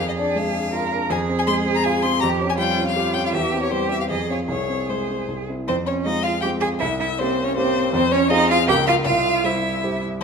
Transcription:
0.00 1.06 F2 medium
0.00 0.72 G#4 medium
0.09 0.12 D#5 medium
0.18 0.47 D4 medium
0.18 0.38 D5 medium
0.36 0.65 G#3 medium
0.36 0.92 F5 loud
0.54 0.84 D4 medium
0.73 1.02 F4 medium
0.73 1.12 A#4 medium
0.91 1.09 D4 medium
1.10 2.18 F2 medium
1.10 2.19 G#4 loud
1.10 1.18 G#5 loud
1.29 1.59 C4 medium
1.39 1.42 G#5 loud
1.47 1.77 G#3 medium
1.47 1.55 C6 loud
1.66 1.95 C4 medium
1.75 1.85 A#5 loud
1.84 2.15 F4 medium
1.84 2.04 G#5 loud
2.02 2.22 C4 medium
2.02 2.20 C6 loud
2.20 3.32 F2 medium
2.20 2.57 G4 medium
2.20 2.29 A#5 loud
2.41 2.71 C#4 medium
2.49 2.53 G#5 loud
2.58 2.89 G3 medium
2.58 2.95 F4 medium
2.58 2.86 G5 loud
2.79 3.08 C#4 medium
2.87 3.16 F5 loud
2.96 3.36 F4 medium
2.96 3.27 G4 medium
3.14 3.34 C#4 medium
3.14 3.24 G5 loud
3.26 3.32 F5 medium
3.32 4.08 E2 medium
3.32 3.71 G4 medium
3.32 3.61 E5 loud
3.53 3.84 C4 medium
3.63 3.73 C#5 medium
3.71 4.02 G3 medium
3.71 4.09 G4 medium
3.71 3.90 C5 medium
3.91 4.10 C4 medium
3.91 4.00 E5 medium
4.01 4.04 F5 medium
4.10 4.48 F2 medium
4.10 4.47 G#4 medium
4.10 4.29 D#5 medium
4.30 4.47 C4 soft
4.30 4.48 F4 soft
4.30 4.39 C#5 medium
4.48 5.25 C2 medium
4.48 5.45 G#4 medium
4.48 4.91 C#5 medium
4.69 5.01 C4 medium
4.89 5.20 G#3 soft
4.89 5.29 C5 medium
5.10 5.29 C4 soft
5.28 5.66 C2 soft
5.49 5.66 C4 soft
5.49 5.66 E4 soft
5.68 6.05 F2 medium
5.68 5.75 C4 medium
5.68 5.76 C5 loud
5.86 6.08 C#4 medium
5.86 5.94 C#5 medium
6.05 6.40 G#3 medium
6.05 6.40 C4 medium
6.05 6.23 D#4 medium
6.05 6.40 F4 medium
6.05 6.24 D#5 loud
6.23 6.31 F4 medium
6.23 6.41 F5 loud
6.41 6.78 G#3 medium
6.41 6.50 G4 medium
6.41 6.49 G5 medium
6.45 6.79 C4 medium
6.45 6.79 F4 medium
6.60 6.69 G#4 medium
6.60 6.68 G#5 loud
6.80 7.18 C2 medium
6.80 6.88 E4 medium
6.80 6.99 E5 medium
6.99 7.07 E4 medium
6.99 7.20 E5 medium
7.18 7.53 A#3 medium
7.18 7.43 C4 medium
7.18 7.54 C#4 medium
7.18 7.54 G4 medium
7.18 7.46 C5 loud
7.44 7.56 C#4 medium
7.44 7.56 C#5 loud
7.57 7.90 A#3 medium
7.57 7.93 C4 medium
7.57 7.90 C#4 medium
7.57 7.90 G4 medium
7.57 7.93 C5 loud
7.93 8.29 F2 medium
7.93 8.01 C4 loud
7.93 8.13 C5 loud
8.12 8.30 C#4 loud
8.12 8.32 C#5 loud
8.30 8.64 C4 medium
8.30 8.49 D#4 loud
8.30 8.65 F4 medium
8.30 8.65 G#4 medium
8.30 8.49 D#5 loud
8.50 8.58 F4 loud
8.50 8.68 F5 loud
8.68 9.05 C#2 medium
8.68 9.03 A#3 medium
8.68 9.03 F4 medium
8.68 8.76 G4 loud
8.68 9.03 A#4 medium
8.68 8.86 G5 loud
8.87 8.95 F4 loud
8.87 8.94 F5 loud
9.05 9.43 C2 medium
9.05 9.47 F4 loud
9.05 9.46 F5 loud
9.44 9.79 G3 medium
9.44 10.04 E4 medium
9.44 9.80 G4 medium
9.44 9.80 C5 medium
9.44 10.03 E5 medium
9.84 10.19 G3 soft
9.84 10.19 G4 medium
9.84 10.19 C5 medium

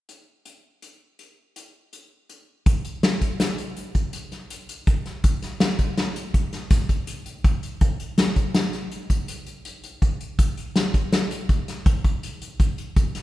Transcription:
0.09 closed hi-hat medium
0.45 closed hi-hat soft
0.82 closed hi-hat medium
1.19 closed hi-hat soft
1.56 closed hi-hat medium
1.93 closed hi-hat medium
2.29 closed hi-hat soft
2.66 kick loud
2.66 closed hi-hat medium
2.85 closed hi-hat medium
3.03 snare loud
3.03 closed hi-hat medium
3.21 kick medium
3.21 closed hi-hat medium
3.40 snare loud
3.40 closed hi-hat medium
3.58 closed hi-hat medium
3.77 closed hi-hat medium
3.95 kick medium
3.95 closed hi-hat medium
4.13 closed hi-hat medium
4.32 snare soft
4.32 closed hi-hat medium
4.50 closed hi-hat medium
4.69 closed hi-hat medium
4.87 kick medium
4.87 closed hi-hat medium
5.06 snare soft
5.06 closed hi-hat soft
5.24 kick medium
5.24 closed hi-hat medium
5.42 snare soft
5.42 closed hi-hat medium
5.60 snare loud
5.60 closed hi-hat medium
5.79 kick medium
5.79 closed hi-hat medium
5.97 snare medium
5.97 closed hi-hat medium
6.16 closed hi-hat medium
6.34 kick medium
6.34 closed hi-hat medium
6.53 snare soft
6.53 closed hi-hat medium
6.71 kick loud
6.71 snare soft
6.71 closed hi-hat medium
6.89 kick medium
6.89 closed hi-hat medium
7.07 closed hi-hat medium
7.26 closed hi-hat medium
7.44 kick loud
7.44 closed hi-hat medium
7.63 closed hi-hat medium
7.81 kick medium
7.81 closed hi-hat medium
8.00 closed hi-hat medium
8.18 snare loud
8.18 closed hi-hat medium
8.36 kick medium
8.36 closed hi-hat medium
8.54 snare loud
8.54 closed hi-hat medium
8.73 snare soft
8.73 closed hi-hat medium
8.92 closed hi-hat medium
9.10 kick medium
9.10 closed hi-hat medium
9.28 closed hi-hat medium
9.46 closed hi-hat medium
9.65 closed hi-hat medium
9.84 closed hi-hat medium
10.02 kick medium
10.02 closed hi-hat medium
10.21 closed hi-hat medium
10.39 kick medium
10.39 closed hi-hat medium
10.57 closed hi-hat medium
10.76 snare loud
10.76 closed hi-hat medium
10.94 kick medium
10.94 closed hi-hat medium
11.12 snare medium
11.12 closed hi-hat medium
11.31 closed hi-hat medium
11.49 kick medium
11.49 closed hi-hat medium
11.68 snare soft
11.68 closed hi-hat medium
11.86 kick loud
11.86 closed hi-hat medium
12.04 kick medium
12.04 closed hi-hat medium
12.23 closed hi-hat medium
12.42 closed hi-hat medium
12.60 kick medium
12.60 closed hi-hat medium
12.78 closed hi-hat medium
12.96 kick medium
12.96 closed hi-hat medium
13.15 snare soft
13.15 closed hi-hat medium

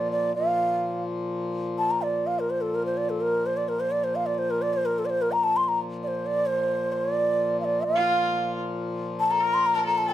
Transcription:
0.00 0.33 A#2 medium
0.00 0.33 F3 medium
0.00 0.11 D5 medium
0.12 0.34 D5 medium
0.34 7.83 A#2 medium
0.34 7.83 F3 medium
0.34 1.03 F5 loud
1.78 1.92 A5 medium
1.91 2.04 A#5 medium
2.02 2.28 D5 medium
2.27 2.41 F5 medium
2.39 2.52 A#4 medium
2.50 2.63 C5 medium
2.61 2.76 A4 medium
2.75 2.85 A#4 medium
2.86 2.99 C5 medium
2.97 3.11 D5 medium
3.10 3.23 A4 medium
3.21 3.48 A#4 loud
3.46 3.58 C5 medium
3.57 3.70 D5 medium
3.69 3.82 A#4 medium
3.80 3.93 C5 loud
3.91 4.05 D5 medium
4.04 4.17 C5 medium
4.15 4.28 F5 medium
4.26 4.35 D5 medium
4.35 4.52 C5 medium
4.35 4.40 D5 medium
4.50 4.63 A#4 medium
4.62 4.75 D5 medium
4.73 4.87 C5 loud
4.86 5.00 A#4 medium
4.99 5.07 A4 medium
5.05 5.11 D5 medium
5.10 5.23 C5 loud
5.22 5.33 A#4 medium
5.32 5.45 A#5 loud
5.44 5.58 A5 loud
5.57 5.64 C6 loud
5.64 5.70 C6 medium
5.68 5.79 A#5 medium
6.03 6.09 D5 medium
6.08 6.28 C5 medium
6.26 6.48 D5 medium
6.46 6.92 C5 medium
6.92 7.12 C5 medium
7.12 7.60 D5 medium
7.60 7.66 F5 medium
7.65 7.86 D5 medium
7.84 10.14 A#2 medium
7.84 10.14 F3 medium
7.84 8.52 F5 loud
7.95 8.59 F4 medium
9.20 9.32 A5 loud
9.30 9.43 A4 medium
9.30 9.55 A#5 medium
9.41 9.73 A#4 medium
9.54 9.68 C6 loud
9.66 9.77 A#5 loud
9.74 9.84 A#4 medium
9.74 9.86 A5 medium
9.85 10.06 A4 medium
9.85 9.99 A#5 loud
9.98 10.11 A5 medium
10.08 10.14 A4 medium
10.08 10.14 F5 loud

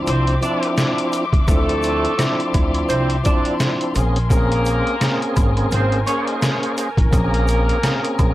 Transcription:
0.00 0.34 F3 loud
0.00 3.92 F3 medium
0.00 0.35 C4 medium
0.00 0.35 D4 medium
0.00 0.36 E4 loud
0.00 3.92 E5 medium
0.00 6.74 C6 medium
0.00 3.92 D6 loud
0.07 0.35 C2 loud
0.07 0.36 C4 loud
0.07 0.36 C5 loud
0.07 closed hi-hat loud
0.07 shaker medium
0.27 closed hi-hat medium
0.41 1.24 F3 loud
0.41 1.25 C4 medium
0.41 0.70 D4 medium
0.41 1.25 D4 medium
0.41 1.26 E4 loud
0.41 0.70 D5 loud
0.41 closed hi-hat medium
0.41 shaker medium
0.63 closed hi-hat medium
0.78 cross-stick medium
0.78 snare loud
0.78 closed hi-hat medium
0.78 shaker medium
0.98 closed hi-hat medium
1.13 closed hi-hat medium
1.13 shaker medium
1.33 1.45 C#2 medium
1.33 kick loud
1.33 closed hi-hat medium
1.47 2.04 D2 loud
1.47 2.14 F3 loud
1.47 2.50 A3 loud
1.47 2.14 C4 medium
1.47 2.14 D4 medium
1.47 2.15 E4 loud
1.47 2.50 A4 loud
1.47 kick loud
1.47 closed hi-hat loud
1.47 shaker medium
1.69 closed hi-hat medium
1.83 closed hi-hat medium
1.83 shaker medium
2.05 closed hi-hat soft
2.17 3.17 F3 loud
2.17 3.17 C4 medium
2.17 3.18 D4 medium
2.17 3.18 E4 loud
2.17 cross-stick loud
2.17 snare loud
2.17 closed hi-hat loud
2.17 shaker medium
2.40 closed hi-hat medium
2.54 2.83 D2 medium
2.54 kick loud
2.54 closed hi-hat medium
2.54 high woodblock medium
2.54 shaker medium
2.74 closed hi-hat medium
2.74 high woodblock medium
2.89 3.18 C2 medium
2.89 3.17 C4 loud
2.89 3.17 C5 loud
2.89 closed hi-hat loud
2.89 shaker medium
3.10 closed hi-hat medium
3.23 3.94 F3 medium
3.23 3.94 C4 medium
3.23 3.95 D4 medium
3.23 3.53 D4 loud
3.23 3.96 E4 loud
3.23 3.53 D5 loud
3.23 kick loud
3.23 closed hi-hat medium
3.23 shaker medium
3.45 closed hi-hat medium
3.60 cross-stick medium
3.60 snare loud
3.60 closed hi-hat medium
3.60 shaker medium
3.81 closed hi-hat medium
3.94 4.80 A#1 loud
3.94 4.17 A#3 loud
3.94 4.18 C4 medium
3.94 4.18 C#4 medium
3.94 4.19 G#4 loud
3.94 8.34 A#4 medium
3.94 8.34 G#5 medium
3.94 closed hi-hat medium
3.94 shaker medium
4.16 closed hi-hat medium
4.29 4.96 A#3 medium
4.29 5.32 A#3 loud
4.29 4.96 C4 medium
4.29 4.97 C#4 medium
4.29 4.97 G#4 loud
4.29 5.32 A#4 loud
4.29 kick loud
4.29 closed hi-hat loud
4.29 shaker medium
4.52 closed hi-hat medium
4.65 closed hi-hat medium
4.65 shaker medium
4.87 closed hi-hat soft
5.00 6.00 A#3 loud
5.00 6.00 C4 medium
5.00 6.01 C#4 medium
5.00 6.01 G#4 loud
5.00 cross-stick loud
5.00 snare loud
5.00 closed hi-hat loud
5.00 shaker medium
5.22 closed hi-hat medium
5.36 5.65 G#1 medium
5.36 kick loud
5.36 closed hi-hat medium
5.36 high woodblock medium
5.36 shaker medium
5.57 closed hi-hat medium
5.57 high woodblock medium
5.71 6.00 G#1 loud
5.71 6.00 C4 loud
5.71 6.00 C5 loud
5.71 closed hi-hat loud
5.71 shaker medium
5.92 closed hi-hat medium
6.05 6.89 A#3 loud
6.05 6.35 C#4 medium
6.05 6.90 C#4 medium
6.05 6.91 G#4 loud
6.05 6.90 C5 medium
6.05 6.35 C#5 loud
6.05 closed hi-hat medium
6.05 shaker medium
6.27 closed hi-hat medium
6.42 cross-stick medium
6.42 snare loud
6.42 closed hi-hat medium
6.42 shaker medium
6.63 closed hi-hat medium
6.77 8.34 A#5 medium
6.77 closed hi-hat medium
6.77 shaker medium
6.97 7.09 A1 loud
6.97 kick medium
6.97 closed hi-hat medium
7.11 7.69 A#1 loud
7.11 7.78 A#3 medium
7.11 8.14 A#3 loud
7.11 7.78 C4 medium
7.11 7.79 C#4 loud
7.11 7.79 G#4 loud
7.11 8.14 A#4 loud
7.11 kick loud
7.11 closed hi-hat loud
7.11 shaker medium
7.34 closed hi-hat medium
7.48 closed hi-hat medium
7.48 shaker medium
7.69 closed hi-hat soft
7.82 8.34 A#3 medium
7.82 8.34 C4 medium
7.82 8.34 C#4 medium
7.82 8.34 G#4 loud
7.82 cross-stick loud
7.82 snare loud
7.82 closed hi-hat loud
7.82 shaker medium
8.04 closed hi-hat medium
8.19 8.34 A#1 medium
8.19 kick loud
8.19 closed hi-hat medium
8.19 high woodblock medium
8.19 shaker medium

